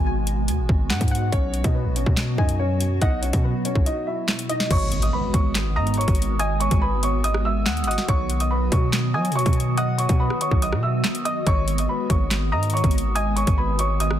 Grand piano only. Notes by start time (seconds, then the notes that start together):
1.32 C#4 C#5
1.64 D#4 D#5
1.74 B3 B4
1.96 C#4 C#5
2.38 D#4 D#5
2.59 C#4 C#5
3.02 D#4 D#5
3.22 C#4 C#5
3.44 B3 B4
3.65 C#4 C#5
3.86 D#4 D#5
4.07 E4 E5
4.49 D#4 D#5
4.71 C#5 C#6
5.03 D#5 D#6
5.13 B4 B5
5.34 C#5 C#6
5.76 D#5 D#6
5.97 C#5 C#6
6.39 D#5 D#6
6.60 C#5 C#6
6.82 B4 B5
7.03 C#5 C#6
7.24 D#5 D#6
7.45 E5 E6
7.87 D#5 D#6
8.08 C#5 C#6
8.40 D#5 D#6
8.51 B4 B5
8.72 C#5 C#6
9.14 D#5 D#6
9.35 C#5 C#6
9.78 D#5 D#6
9.98 C#5 C#6
10.20 B4 B5
10.41 C#5 C#6
10.62 D#5 D#6
10.83 E5 E6
11.25 D#5 D#6
11.47 C#5 C#6
11.79 D#5 D#6
11.89 B4 B5
12.10 C#5 C#6
12.52 D#5 D#6
12.73 C#5 C#6
13.15 D#5 D#6
13.36 C#5 C#6
13.58 B4 B5
13.79 C#5 C#6
14.00 D#5 D#6